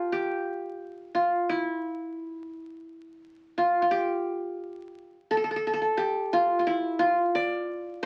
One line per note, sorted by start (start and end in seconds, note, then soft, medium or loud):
0.00 1.11 F4 medium
0.00 0.12 G4 medium
0.00 0.39 A4 medium
0.12 1.38 G4 medium
1.15 1.55 F4 medium
1.49 3.64 E4 medium
3.58 3.82 F4 medium
3.82 5.17 F4 medium
3.91 5.33 G4 medium
5.31 5.37 A4 medium
5.37 5.44 A4 medium
5.44 5.50 A4 medium
5.51 5.56 A4 medium
5.56 5.67 A4 medium
5.67 5.73 A4 medium
5.74 5.81 A4 medium
5.82 6.99 A4 medium
5.97 7.23 G4 medium
6.33 6.59 F4 medium
6.59 6.73 F4 medium
6.67 7.05 E4 medium
6.99 8.06 F4 medium
7.35 8.06 D5 medium